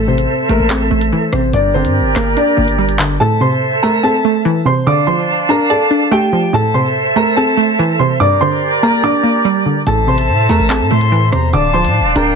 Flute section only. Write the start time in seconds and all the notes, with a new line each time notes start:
Already playing: A4 C5 E5
1.53 G4 A#4 D5
3.20 A4 C5 E5
4.87 D4 D5 F5 A5
6.53 A4 C5 E5
8.20 G4 A#4 D5
9.87 A4 C5 E5
11.53 D4 D5 F5 A5